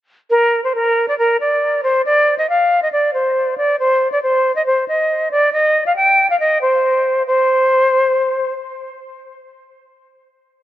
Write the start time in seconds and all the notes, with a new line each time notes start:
0.31 A#4
0.64 C5
0.75 A#4
1.08 D5
1.19 A#4
1.40 D5
1.83 C5
2.06 D5
2.38 D#5
2.49 F5
2.82 D#5
2.92 D5
3.14 C5
3.58 D5
3.79 C5
4.12 D5
4.23 C5
4.56 D#5
4.66 C5
4.88 D#5
5.31 D5
5.53 D#5
5.86 F5
5.96 G5
6.30 F5
6.40 D#5
6.62 C5
7.27 C5